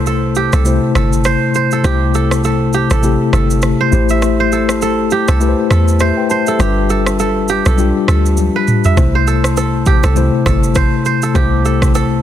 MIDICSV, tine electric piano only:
0, 0, Header, 1, 2, 480
1, 0, Start_track
1, 0, Key_signature, 0, "major"
1, 0, Tempo, 594059
1, 1491, Time_signature, 4, 2, 24, 8
1, 9874, End_track
2, 0, Start_track
2, 0, Title_t, "Tine electric piano"
2, 0, Program_c, 0, 4
2, 0, Control_c, 0, 64, 127
2, 0, Note_on_c, 0, 48, 78
2, 0, Note_on_c, 0, 57, 74
2, 0, Note_on_c, 0, 64, 69
2, 0, Note_on_c, 0, 72, 85
2, 408, Note_off_c, 0, 48, 0
2, 411, Note_off_c, 0, 57, 0
2, 415, Note_off_c, 0, 64, 0
2, 418, Note_off_c, 0, 72, 0
2, 518, Note_on_c, 0, 48, 87
2, 525, Note_on_c, 0, 57, 80
2, 532, Note_on_c, 0, 64, 79
2, 539, Note_on_c, 0, 72, 96
2, 1368, Note_off_c, 0, 48, 0
2, 1371, Note_off_c, 0, 57, 0
2, 1375, Note_off_c, 0, 64, 0
2, 1378, Note_off_c, 0, 72, 0
2, 1480, Note_on_c, 0, 48, 78
2, 1487, Note_on_c, 0, 57, 74
2, 1494, Note_on_c, 0, 64, 72
2, 1501, Note_on_c, 0, 72, 84
2, 2329, Note_off_c, 0, 48, 0
2, 2332, Note_off_c, 0, 57, 0
2, 2336, Note_off_c, 0, 64, 0
2, 2339, Note_off_c, 0, 72, 0
2, 2441, Note_on_c, 0, 48, 87
2, 2447, Note_on_c, 0, 57, 79
2, 2454, Note_on_c, 0, 64, 79
2, 2461, Note_on_c, 0, 67, 98
2, 3151, Note_off_c, 0, 57, 0
2, 3158, Note_off_c, 0, 64, 0
2, 3161, Note_on_c, 0, 57, 91
2, 3165, Note_off_c, 0, 67, 0
2, 3166, Note_off_c, 0, 48, 0
2, 3168, Note_on_c, 0, 64, 83
2, 3175, Note_on_c, 0, 67, 83
2, 3180, Control_c, 0, 64, 0
2, 3180, Note_on_c, 0, 72, 98
2, 3326, Control_c, 0, 64, 127
2, 4009, Note_off_c, 0, 57, 0
2, 4013, Note_off_c, 0, 64, 0
2, 4016, Note_off_c, 0, 67, 0
2, 4019, Note_off_c, 0, 72, 0
2, 4361, Note_on_c, 0, 57, 87
2, 4368, Note_on_c, 0, 64, 80
2, 4375, Note_on_c, 0, 67, 82
2, 4382, Note_on_c, 0, 71, 80
2, 4434, Note_on_c, 0, 72, 99
2, 4437, Note_off_c, 0, 71, 0
2, 4613, Note_off_c, 0, 67, 0
2, 4642, Note_off_c, 0, 72, 0
2, 4852, Note_on_c, 0, 76, 63
2, 4856, Note_on_c, 0, 67, 55
2, 4984, Note_off_c, 0, 76, 0
2, 4986, Note_off_c, 0, 67, 0
2, 4988, Note_on_c, 0, 79, 75
2, 4994, Note_on_c, 0, 71, 61
2, 5085, Note_off_c, 0, 79, 0
2, 5088, Note_off_c, 0, 71, 0
2, 5088, Note_on_c, 0, 81, 73
2, 5094, Note_on_c, 0, 72, 62
2, 5209, Note_off_c, 0, 57, 0
2, 5213, Note_off_c, 0, 64, 0
2, 5222, Note_off_c, 0, 81, 0
2, 5224, Note_off_c, 0, 72, 0
2, 5229, Note_on_c, 0, 76, 64
2, 5233, Note_on_c, 0, 67, 53
2, 5320, Note_on_c, 0, 55, 78
2, 5326, Note_on_c, 0, 62, 72
2, 5334, Note_on_c, 0, 65, 73
2, 5339, Note_on_c, 0, 71, 89
2, 5341, Control_c, 0, 64, 0
2, 5457, Note_off_c, 0, 76, 0
2, 5460, Note_off_c, 0, 67, 0
2, 5473, Control_c, 0, 64, 127
2, 6169, Note_off_c, 0, 55, 0
2, 6172, Note_off_c, 0, 62, 0
2, 6176, Note_off_c, 0, 65, 0
2, 6179, Note_off_c, 0, 71, 0
2, 6281, Note_on_c, 0, 55, 87
2, 6288, Note_on_c, 0, 62, 77
2, 6294, Note_on_c, 0, 65, 80
2, 6301, Note_on_c, 0, 67, 95
2, 7129, Note_off_c, 0, 55, 0
2, 7133, Note_off_c, 0, 62, 0
2, 7136, Note_off_c, 0, 65, 0
2, 7139, Note_off_c, 0, 67, 0
2, 7241, Note_on_c, 0, 48, 81
2, 7248, Note_on_c, 0, 57, 69
2, 7254, Note_on_c, 0, 64, 71
2, 7260, Note_on_c, 0, 72, 85
2, 7263, Control_c, 0, 64, 0
2, 7390, Control_c, 0, 64, 127
2, 8089, Note_off_c, 0, 48, 0
2, 8093, Note_off_c, 0, 57, 0
2, 8096, Note_off_c, 0, 64, 0
2, 8099, Note_off_c, 0, 72, 0
2, 8199, Note_on_c, 0, 48, 91
2, 8206, Note_on_c, 0, 57, 79
2, 8214, Note_on_c, 0, 64, 81
2, 8219, Note_on_c, 0, 72, 95
2, 9048, Note_off_c, 0, 48, 0
2, 9052, Note_off_c, 0, 57, 0
2, 9056, Note_off_c, 0, 64, 0
2, 9059, Note_off_c, 0, 72, 0
2, 9160, Note_on_c, 0, 48, 79
2, 9167, Note_on_c, 0, 57, 76
2, 9174, Note_on_c, 0, 64, 74
2, 9180, Note_on_c, 0, 72, 89
2, 9874, Note_off_c, 0, 48, 0
2, 9874, Note_off_c, 0, 57, 0
2, 9874, Note_off_c, 0, 64, 0
2, 9874, Note_off_c, 0, 72, 0
2, 9874, End_track
0, 0, End_of_file